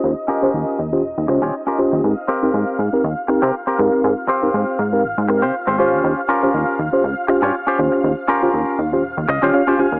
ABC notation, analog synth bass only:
X:1
M:4/4
L:1/16
Q:"Swing 16ths" 1/4=120
K:Ab
V:1 name="Analog synth bass" clef=bass
E,, z2 E,, E,, z E,,2 E,,, E,, D,, E,,, z2 E,, E,, | A,, z2 A,, A,, z A,, z E,, z2 C, z2 A,, z | A,, z2 A,, A,, z A,,2 A,,, A,,2 C, z A,,,2 E,, | E,, z2 E,, E,, z E,, z D,, z2 G,, z2 E,, z |
E,, z2 E,, E,, z E,,2 E,,, E,, D,, E,,, z2 E,, E,, |]